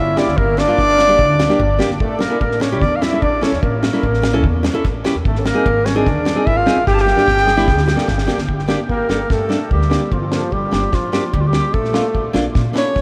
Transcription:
Already playing: G1 E4 E5
0.16 A#3 D4 G4 D5, snare
0.27 D2, snare
0.37 G1 A#3 A#4, kick
0.57 D4 D5, muted nylon-string guitar stroke, snare
0.67 A#3 D4 F4
0.78 G1, kick, snare
0.89 snare
0.97 muted nylon-string guitar stroke, snare
1.08 A#3 D4 G4
1.19 D2, kick
1.39 muted nylon-string guitar stroke, snare
1.48 A#3 D4 G4, snare
1.59 G1, kick
1.79 A#3 D4 G4, snare
1.90 G1, snare
2.00 A1 A3 A4, kick
2.19 A#3 A#4, muted nylon-string guitar stroke, snare
2.30 C#4 E4 A4
2.41 A1 A#3 A#4, kick
2.51 snare
2.60 C#4 C#5, muted nylon-string guitar stroke, snare
2.71 C#4 E4 G4
2.81 E2 D4 D5, kick, snare
2.96 F5
3.00 E4 E5, muted nylon-string guitar stroke, snare
3.12 C#4 E4 A4
3.21 A1 D4 D5, kick
3.41 C#4 E4 A4 C#5, snare
3.52 E2, snare
3.63 A1 A#3 A#4, kick
3.83 muted nylon-string guitar stroke, snare
3.93 C#4 E4 A4, snare
4.03 A1, kick
4.14 snare
4.22 muted nylon-string guitar stroke, snare
4.33 C#4 E4 A4
4.44 E2, kick
4.63 muted nylon-string guitar stroke, snare
4.73 C#4 E4 A4
4.84 A1, kick, snare
5.04 C#4 E4 G4, snare
5.15 E2
5.25 G#1 A3 A4, kick
5.35 C#4, snare
5.45 A#3 A#4, muted nylon-string guitar stroke, snare
5.54 C4 D#4 G#4
5.66 G#1, kick
5.85 C#4 C#5, muted nylon-string guitar stroke, snare
5.95 C4 D4 D#4 G#4 D5
6.06 D#2, kick, snare
6.25 muted nylon-string guitar stroke, snare
6.35 C4 D#4 G#4
6.46 G#1 E4 E5, kick
6.57 F4 F5
6.66 C4 D#4 G#4, snare
6.77 G#1
6.87 G1 G4 G5, kick, snare
6.94 A5, snare
7.00 G4 G5
7.05 muted nylon-string guitar stroke, snare
7.16 A#3 D4 G4, snare
7.28 G1, kick, snare
7.37 snare
7.44 G#4, muted nylon-string guitar stroke, snare
7.56 A#3 D4 E4 G4, snare
7.68 D2 G#4, kick, snare
7.78 G4, snare
7.87 muted nylon-string guitar stroke, snare
7.96 A#3 D4 A4, snare
8.08 G1, kick, snare
8.18 snare
8.27 A#3 D4 G4, snare
8.38 D2, snare
8.48 G1, kick
8.59 snare
8.68 A#3 D4 G4, snare
8.89 G1 A#3 A#4, kick
9.09 G1 A#3 D4 A4, snare
9.30 G2 A3 A4, kick, snare
9.49 A#3 D4 A4, snare
9.71 D2 G3 G4, kick
9.81 snare
9.89 A#3 D4 G4, snare
10.12 G1 F3 F4, kick
10.19 E3
10.26 F3
10.32 A#3 D4 A4, snare
10.52 G1 G3 G4, kick
10.71 G1 A#3 D4 G4, snare
10.92 G2 F3 F4, kick, snare
11.12 F3 A#3 D4 G4, snare
11.33 D2 G3 G4, kick
11.41 F4
11.47 G3 G4
11.53 A#3 D4 G4, snare
11.74 A#1 A3 A4, kick
11.84 snare
11.93 A#3 D4 F4, snare
12.14 A#1, kick
12.33 A#1 A#3 D4 F4, snare
12.55 A#2, kick, snare
12.73 A#3 C#4 D4 E4, snare
12.78 C#5
12.96 F2, kick, snare

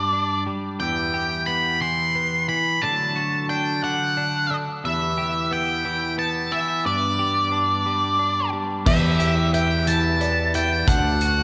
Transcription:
Already playing: G2 G3 D4 G4 D5
0.13 D4
0.47 G3
0.80 E2 E3 B3 G4 E5 G5
1.14 G4
1.46 B3 B5
1.82 E3 C6
2.15 B3
2.49 E3 B5
2.82 D3 F#3 A3 D5 A5
3.16 F#4
3.49 D4 G5
3.83 D3 F#5
4.17 D4
4.51 D3
4.84 E2 E3 B3 G4 E5 B5
5.18 G4
5.51 B3 G5
5.85 E3
6.18 B3 A5
6.52 E3 E5
6.85 G2 B3 D4 D5
7.19 G4
7.52 D4
7.86 G3
8.19 D4
8.53 G3
8.86 E2 B3 E4 G4 E5, kick, crash
9.20 G4, closed hi-hat
9.53 B3 E5 G5, closed hi-hat
9.87 E3 A5, closed hi-hat
10.21 B3 D5, closed hi-hat
10.54 E3 E5 G5, closed hi-hat
10.88 D2 D3 A3 D4 F#4 F#5, kick, closed hi-hat
11.21 F#4, closed hi-hat

